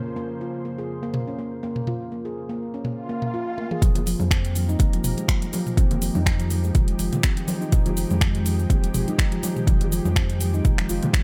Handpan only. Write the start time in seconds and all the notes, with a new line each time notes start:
0.16 A#3
0.41 F4
0.65 A#3
0.78 G#4
1.03 A#3
1.27 C#4
1.39 A#3
1.63 A#3
1.88 F4
2.12 A#3
2.25 G#4
2.49 A#3
2.74 C#4
2.85 A#3
3.09 A#3
3.34 F4
3.58 A#3
3.71 G#4
3.83 F3
4.07 F3
4.31 C4
4.56 F3
4.69 D#4
4.93 F3
5.18 G#3
5.29 F3
5.53 F3
5.78 C4
6.02 F3
6.15 D#4
6.39 F3
6.64 G#3
6.75 F3
6.99 F3
7.23 C4
7.48 F3
7.61 D#4
7.86 F3
8.10 G#3
8.21 F3
8.46 F3
8.70 C4
8.95 F3
9.08 D#4
9.32 F3
9.56 G#3
9.68 F3
9.92 F3
10.16 C4
10.41 F3
10.54 D#4
10.78 F3
10.90 F4
11.03 F3
11.14 F3